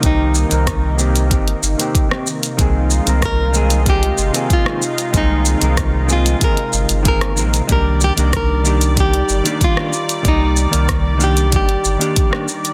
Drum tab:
HH |x--xx--xxx-xx--x|x--xx--xxx-xx--x|x--xx--xxx-xxx-x|x--xx--xxx-xx--x|
SH |x-xxx-xxx-xxx-xx|x-xxx-xxx-xxx-xx|x-xxx-xxx-xxx-xx|x-xxx-xxx-xxx-xx|
SD |----r--------r--|----r--------r--|----r--------r--|----r--------r--|
BD |o---o---o---o---|o---o---o---o---|o---o---o---o---|o---o---o---o---|

HH |x--xx--xxx-xx--x|
SH |x-xxx-xxx-xxx-xx|
SD |----r--------r--|
BD |o---o---o---o---|